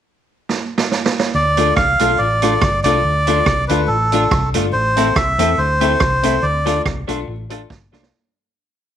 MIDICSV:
0, 0, Header, 1, 7, 480
1, 0, Start_track
1, 0, Tempo, 423729
1, 1526, Time_signature, 4, 2, 24, 8
1, 10152, End_track
2, 0, Start_track
2, 0, Title_t, "Melodica"
2, 0, Program_c, 0, 22
2, 1527, Note_on_c, 0, 74, 111
2, 1973, Note_off_c, 0, 74, 0
2, 1995, Note_on_c, 0, 77, 106
2, 2473, Note_on_c, 0, 74, 103
2, 2495, Note_off_c, 0, 77, 0
2, 3173, Note_off_c, 0, 74, 0
2, 3210, Note_on_c, 0, 74, 106
2, 4131, Note_off_c, 0, 74, 0
2, 4168, Note_on_c, 0, 71, 86
2, 4390, Note_on_c, 0, 69, 92
2, 4403, Note_off_c, 0, 71, 0
2, 5090, Note_off_c, 0, 69, 0
2, 5350, Note_on_c, 0, 72, 99
2, 5843, Note_on_c, 0, 76, 95
2, 5851, Note_off_c, 0, 72, 0
2, 6322, Note_on_c, 0, 72, 92
2, 6337, Note_off_c, 0, 76, 0
2, 7277, Note_on_c, 0, 74, 93
2, 7311, Note_off_c, 0, 72, 0
2, 7726, Note_off_c, 0, 74, 0
2, 10152, End_track
3, 0, Start_track
3, 0, Title_t, "Upright piano"
3, 0, Program_c, 1, 0
3, 1782, Note_on_c, 1, 62, 86
3, 1790, Note_on_c, 1, 65, 77
3, 1797, Note_on_c, 1, 69, 99
3, 1931, Note_off_c, 1, 62, 0
3, 1935, Note_off_c, 1, 65, 0
3, 1938, Note_off_c, 1, 69, 0
3, 2265, Note_on_c, 1, 62, 85
3, 2273, Note_on_c, 1, 65, 85
3, 2279, Note_on_c, 1, 69, 101
3, 2413, Note_off_c, 1, 62, 0
3, 2416, Note_off_c, 1, 65, 0
3, 2419, Note_off_c, 1, 69, 0
3, 2496, Note_on_c, 1, 65, 24
3, 2496, Note_on_c, 1, 69, 26
3, 2543, Note_off_c, 1, 65, 0
3, 2543, Note_off_c, 1, 69, 0
3, 2747, Note_on_c, 1, 62, 83
3, 2752, Note_on_c, 1, 65, 78
3, 2760, Note_on_c, 1, 69, 93
3, 2893, Note_off_c, 1, 62, 0
3, 2896, Note_off_c, 1, 65, 0
3, 2900, Note_off_c, 1, 69, 0
3, 3231, Note_on_c, 1, 62, 89
3, 3236, Note_on_c, 1, 65, 80
3, 3244, Note_on_c, 1, 69, 105
3, 3375, Note_off_c, 1, 62, 0
3, 3378, Note_off_c, 1, 65, 0
3, 3382, Note_off_c, 1, 69, 0
3, 3706, Note_on_c, 1, 62, 89
3, 3712, Note_on_c, 1, 65, 82
3, 3720, Note_on_c, 1, 69, 97
3, 3852, Note_off_c, 1, 62, 0
3, 3855, Note_off_c, 1, 65, 0
3, 3859, Note_off_c, 1, 69, 0
3, 4188, Note_on_c, 1, 62, 93
3, 4192, Note_on_c, 1, 65, 79
3, 4201, Note_on_c, 1, 69, 99
3, 4333, Note_off_c, 1, 62, 0
3, 4335, Note_off_c, 1, 65, 0
3, 4340, Note_off_c, 1, 69, 0
3, 4418, Note_on_c, 1, 69, 27
3, 4421, Note_on_c, 1, 65, 23
3, 4463, Note_off_c, 1, 69, 0
3, 4465, Note_off_c, 1, 65, 0
3, 4667, Note_on_c, 1, 62, 82
3, 4675, Note_on_c, 1, 65, 78
3, 4683, Note_on_c, 1, 69, 91
3, 4812, Note_off_c, 1, 62, 0
3, 4816, Note_off_c, 1, 65, 0
3, 4820, Note_off_c, 1, 69, 0
3, 5145, Note_on_c, 1, 62, 86
3, 5150, Note_on_c, 1, 65, 78
3, 5161, Note_on_c, 1, 69, 91
3, 5291, Note_off_c, 1, 62, 0
3, 5293, Note_off_c, 1, 65, 0
3, 5299, Note_off_c, 1, 69, 0
3, 5620, Note_on_c, 1, 60, 89
3, 5624, Note_on_c, 1, 64, 83
3, 5634, Note_on_c, 1, 69, 97
3, 5769, Note_off_c, 1, 60, 0
3, 5770, Note_off_c, 1, 64, 0
3, 5775, Note_off_c, 1, 69, 0
3, 6100, Note_on_c, 1, 60, 86
3, 6107, Note_on_c, 1, 64, 81
3, 6115, Note_on_c, 1, 69, 98
3, 6248, Note_off_c, 1, 60, 0
3, 6252, Note_off_c, 1, 64, 0
3, 6255, Note_off_c, 1, 69, 0
3, 6327, Note_on_c, 1, 64, 23
3, 6332, Note_on_c, 1, 69, 27
3, 6377, Note_off_c, 1, 64, 0
3, 6379, Note_off_c, 1, 69, 0
3, 6581, Note_on_c, 1, 60, 93
3, 6586, Note_on_c, 1, 64, 86
3, 6595, Note_on_c, 1, 69, 101
3, 6729, Note_off_c, 1, 60, 0
3, 6731, Note_off_c, 1, 64, 0
3, 6736, Note_off_c, 1, 69, 0
3, 7055, Note_on_c, 1, 60, 82
3, 7062, Note_on_c, 1, 64, 82
3, 7069, Note_on_c, 1, 69, 94
3, 7206, Note_off_c, 1, 60, 0
3, 7209, Note_off_c, 1, 64, 0
3, 7213, Note_off_c, 1, 69, 0
3, 7534, Note_on_c, 1, 62, 84
3, 7541, Note_on_c, 1, 65, 83
3, 7549, Note_on_c, 1, 69, 89
3, 7685, Note_off_c, 1, 62, 0
3, 7689, Note_off_c, 1, 65, 0
3, 7693, Note_off_c, 1, 69, 0
3, 8014, Note_on_c, 1, 62, 94
3, 8022, Note_on_c, 1, 65, 82
3, 8026, Note_on_c, 1, 69, 101
3, 8166, Note_off_c, 1, 62, 0
3, 8169, Note_off_c, 1, 65, 0
3, 8171, Note_off_c, 1, 69, 0
3, 8492, Note_on_c, 1, 62, 87
3, 8499, Note_on_c, 1, 65, 81
3, 8506, Note_on_c, 1, 69, 89
3, 8645, Note_off_c, 1, 62, 0
3, 8648, Note_off_c, 1, 65, 0
3, 8652, Note_off_c, 1, 69, 0
3, 8970, Note_on_c, 1, 62, 95
3, 8979, Note_on_c, 1, 65, 87
3, 8983, Note_on_c, 1, 69, 97
3, 9124, Note_off_c, 1, 62, 0
3, 9129, Note_off_c, 1, 65, 0
3, 9131, Note_off_c, 1, 69, 0
3, 10152, End_track
4, 0, Start_track
4, 0, Title_t, "Clean electric guitar"
4, 0, Program_c, 2, 27
4, 1781, Note_on_c, 2, 57, 80
4, 1784, Note_on_c, 2, 62, 76
4, 1794, Note_on_c, 2, 65, 80
4, 1899, Note_off_c, 2, 57, 0
4, 1901, Note_off_c, 2, 62, 0
4, 1906, Note_off_c, 2, 65, 0
4, 2271, Note_on_c, 2, 57, 79
4, 2277, Note_on_c, 2, 62, 83
4, 2282, Note_on_c, 2, 65, 94
4, 2384, Note_off_c, 2, 57, 0
4, 2387, Note_off_c, 2, 62, 0
4, 2390, Note_off_c, 2, 65, 0
4, 2751, Note_on_c, 2, 57, 73
4, 2758, Note_on_c, 2, 62, 78
4, 2759, Note_on_c, 2, 65, 88
4, 2864, Note_off_c, 2, 57, 0
4, 2867, Note_off_c, 2, 62, 0
4, 2868, Note_off_c, 2, 65, 0
4, 3227, Note_on_c, 2, 57, 87
4, 3237, Note_on_c, 2, 62, 91
4, 3241, Note_on_c, 2, 65, 96
4, 3342, Note_off_c, 2, 57, 0
4, 3347, Note_off_c, 2, 62, 0
4, 3349, Note_off_c, 2, 65, 0
4, 3713, Note_on_c, 2, 57, 77
4, 3716, Note_on_c, 2, 62, 86
4, 3721, Note_on_c, 2, 65, 85
4, 3825, Note_off_c, 2, 57, 0
4, 3826, Note_off_c, 2, 62, 0
4, 3829, Note_off_c, 2, 65, 0
4, 4198, Note_on_c, 2, 57, 82
4, 4198, Note_on_c, 2, 62, 88
4, 4205, Note_on_c, 2, 65, 83
4, 4307, Note_off_c, 2, 57, 0
4, 4307, Note_off_c, 2, 62, 0
4, 4311, Note_off_c, 2, 65, 0
4, 4683, Note_on_c, 2, 57, 76
4, 4689, Note_on_c, 2, 62, 77
4, 4698, Note_on_c, 2, 65, 91
4, 4789, Note_off_c, 2, 57, 0
4, 4792, Note_off_c, 2, 62, 0
4, 4797, Note_off_c, 2, 65, 0
4, 5152, Note_on_c, 2, 57, 83
4, 5160, Note_on_c, 2, 62, 86
4, 5168, Note_on_c, 2, 65, 92
4, 5263, Note_off_c, 2, 57, 0
4, 5268, Note_off_c, 2, 62, 0
4, 5271, Note_off_c, 2, 65, 0
4, 5631, Note_on_c, 2, 57, 79
4, 5639, Note_on_c, 2, 60, 85
4, 5645, Note_on_c, 2, 64, 94
4, 5743, Note_off_c, 2, 57, 0
4, 5747, Note_off_c, 2, 60, 0
4, 5750, Note_off_c, 2, 64, 0
4, 6111, Note_on_c, 2, 57, 89
4, 6117, Note_on_c, 2, 60, 84
4, 6124, Note_on_c, 2, 64, 87
4, 6223, Note_off_c, 2, 57, 0
4, 6226, Note_off_c, 2, 60, 0
4, 6229, Note_off_c, 2, 64, 0
4, 6582, Note_on_c, 2, 57, 85
4, 6587, Note_on_c, 2, 60, 89
4, 6595, Note_on_c, 2, 64, 93
4, 6698, Note_off_c, 2, 57, 0
4, 6700, Note_off_c, 2, 60, 0
4, 6704, Note_off_c, 2, 64, 0
4, 7069, Note_on_c, 2, 57, 83
4, 7074, Note_on_c, 2, 60, 89
4, 7079, Note_on_c, 2, 64, 96
4, 7181, Note_off_c, 2, 57, 0
4, 7184, Note_off_c, 2, 60, 0
4, 7187, Note_off_c, 2, 64, 0
4, 7545, Note_on_c, 2, 57, 81
4, 7554, Note_on_c, 2, 65, 96
4, 7556, Note_on_c, 2, 62, 76
4, 7659, Note_off_c, 2, 57, 0
4, 7664, Note_off_c, 2, 65, 0
4, 7665, Note_off_c, 2, 62, 0
4, 8018, Note_on_c, 2, 57, 83
4, 8032, Note_on_c, 2, 62, 83
4, 8034, Note_on_c, 2, 65, 97
4, 8136, Note_off_c, 2, 57, 0
4, 8143, Note_off_c, 2, 62, 0
4, 8144, Note_off_c, 2, 65, 0
4, 8504, Note_on_c, 2, 57, 76
4, 8513, Note_on_c, 2, 62, 85
4, 8518, Note_on_c, 2, 65, 92
4, 8619, Note_off_c, 2, 57, 0
4, 8624, Note_off_c, 2, 62, 0
4, 8626, Note_off_c, 2, 65, 0
4, 8979, Note_on_c, 2, 57, 87
4, 8991, Note_on_c, 2, 65, 94
4, 8992, Note_on_c, 2, 62, 97
4, 9097, Note_off_c, 2, 57, 0
4, 9104, Note_off_c, 2, 62, 0
4, 9104, Note_off_c, 2, 65, 0
4, 10152, End_track
5, 0, Start_track
5, 0, Title_t, "Fingered electric bass"
5, 0, Program_c, 3, 33
5, 1522, Note_on_c, 3, 38, 92
5, 1932, Note_off_c, 3, 38, 0
5, 2001, Note_on_c, 3, 36, 85
5, 2223, Note_off_c, 3, 36, 0
5, 2263, Note_on_c, 3, 35, 89
5, 2452, Note_off_c, 3, 35, 0
5, 2481, Note_on_c, 3, 33, 88
5, 2891, Note_off_c, 3, 33, 0
5, 2964, Note_on_c, 3, 31, 94
5, 3185, Note_off_c, 3, 31, 0
5, 3214, Note_on_c, 3, 36, 91
5, 3406, Note_off_c, 3, 36, 0
5, 3442, Note_on_c, 3, 38, 95
5, 3851, Note_off_c, 3, 38, 0
5, 3920, Note_on_c, 3, 36, 84
5, 4142, Note_off_c, 3, 36, 0
5, 4180, Note_on_c, 3, 38, 82
5, 4369, Note_off_c, 3, 38, 0
5, 4400, Note_on_c, 3, 33, 100
5, 4810, Note_off_c, 3, 33, 0
5, 4886, Note_on_c, 3, 36, 89
5, 5142, Note_on_c, 3, 31, 87
5, 5159, Note_off_c, 3, 36, 0
5, 5329, Note_off_c, 3, 31, 0
5, 5361, Note_on_c, 3, 33, 100
5, 5769, Note_off_c, 3, 33, 0
5, 5843, Note_on_c, 3, 36, 89
5, 6063, Note_off_c, 3, 36, 0
5, 6096, Note_on_c, 3, 40, 95
5, 6286, Note_off_c, 3, 40, 0
5, 6320, Note_on_c, 3, 38, 100
5, 6729, Note_off_c, 3, 38, 0
5, 6802, Note_on_c, 3, 36, 88
5, 7210, Note_off_c, 3, 36, 0
5, 7280, Note_on_c, 3, 38, 97
5, 7689, Note_off_c, 3, 38, 0
5, 7765, Note_on_c, 3, 36, 89
5, 7984, Note_off_c, 3, 36, 0
5, 8019, Note_on_c, 3, 35, 88
5, 8208, Note_off_c, 3, 35, 0
5, 8241, Note_on_c, 3, 33, 94
5, 8650, Note_off_c, 3, 33, 0
5, 8723, Note_on_c, 3, 31, 85
5, 8944, Note_off_c, 3, 31, 0
5, 8976, Note_on_c, 3, 36, 93
5, 9167, Note_off_c, 3, 36, 0
5, 10152, End_track
6, 0, Start_track
6, 0, Title_t, "Muted clean electric guitar strokes"
6, 2006, Note_on_c, 9, 29, 38
6, 2119, Note_off_c, 9, 29, 0
6, 5849, Note_on_c, 9, 29, 42
6, 5962, Note_off_c, 9, 29, 0
6, 10152, End_track
7, 0, Start_track
7, 0, Title_t, "Drums"
7, 558, Note_on_c, 9, 38, 57
7, 671, Note_off_c, 9, 38, 0
7, 880, Note_on_c, 9, 38, 84
7, 993, Note_off_c, 9, 38, 0
7, 1036, Note_on_c, 9, 38, 71
7, 1149, Note_off_c, 9, 38, 0
7, 1197, Note_on_c, 9, 38, 93
7, 1310, Note_off_c, 9, 38, 0
7, 1352, Note_on_c, 9, 38, 89
7, 1466, Note_off_c, 9, 38, 0
7, 1778, Note_on_c, 9, 42, 83
7, 1891, Note_off_c, 9, 42, 0
7, 1999, Note_on_c, 9, 37, 100
7, 2001, Note_on_c, 9, 36, 97
7, 2112, Note_off_c, 9, 37, 0
7, 2114, Note_off_c, 9, 36, 0
7, 2259, Note_on_c, 9, 42, 89
7, 2372, Note_off_c, 9, 42, 0
7, 2740, Note_on_c, 9, 42, 81
7, 2747, Note_on_c, 9, 37, 67
7, 2853, Note_off_c, 9, 42, 0
7, 2860, Note_off_c, 9, 37, 0
7, 2961, Note_on_c, 9, 37, 115
7, 2963, Note_on_c, 9, 36, 110
7, 3074, Note_off_c, 9, 37, 0
7, 3076, Note_off_c, 9, 36, 0
7, 3217, Note_on_c, 9, 42, 92
7, 3330, Note_off_c, 9, 42, 0
7, 3702, Note_on_c, 9, 42, 81
7, 3815, Note_off_c, 9, 42, 0
7, 3921, Note_on_c, 9, 37, 116
7, 3922, Note_on_c, 9, 36, 93
7, 4034, Note_off_c, 9, 37, 0
7, 4035, Note_off_c, 9, 36, 0
7, 4184, Note_on_c, 9, 42, 88
7, 4298, Note_off_c, 9, 42, 0
7, 4667, Note_on_c, 9, 42, 82
7, 4780, Note_off_c, 9, 42, 0
7, 4885, Note_on_c, 9, 36, 106
7, 4886, Note_on_c, 9, 37, 112
7, 4999, Note_off_c, 9, 36, 0
7, 4999, Note_off_c, 9, 37, 0
7, 5142, Note_on_c, 9, 42, 94
7, 5255, Note_off_c, 9, 42, 0
7, 5625, Note_on_c, 9, 42, 83
7, 5738, Note_off_c, 9, 42, 0
7, 5845, Note_on_c, 9, 36, 99
7, 5846, Note_on_c, 9, 37, 111
7, 5958, Note_off_c, 9, 36, 0
7, 5959, Note_off_c, 9, 37, 0
7, 6106, Note_on_c, 9, 42, 93
7, 6219, Note_off_c, 9, 42, 0
7, 6582, Note_on_c, 9, 42, 81
7, 6696, Note_off_c, 9, 42, 0
7, 6798, Note_on_c, 9, 37, 109
7, 6803, Note_on_c, 9, 36, 105
7, 6911, Note_off_c, 9, 37, 0
7, 6916, Note_off_c, 9, 36, 0
7, 7061, Note_on_c, 9, 42, 97
7, 7174, Note_off_c, 9, 42, 0
7, 7550, Note_on_c, 9, 42, 84
7, 7663, Note_off_c, 9, 42, 0
7, 7765, Note_on_c, 9, 36, 90
7, 7767, Note_on_c, 9, 37, 102
7, 7879, Note_off_c, 9, 36, 0
7, 7880, Note_off_c, 9, 37, 0
7, 8026, Note_on_c, 9, 42, 89
7, 8139, Note_off_c, 9, 42, 0
7, 8499, Note_on_c, 9, 42, 85
7, 8612, Note_off_c, 9, 42, 0
7, 8725, Note_on_c, 9, 36, 102
7, 8728, Note_on_c, 9, 38, 55
7, 8838, Note_off_c, 9, 36, 0
7, 8842, Note_off_c, 9, 38, 0
7, 8985, Note_on_c, 9, 38, 88
7, 9095, Note_off_c, 9, 38, 0
7, 9095, Note_on_c, 9, 38, 86
7, 9209, Note_off_c, 9, 38, 0
7, 10152, End_track
0, 0, End_of_file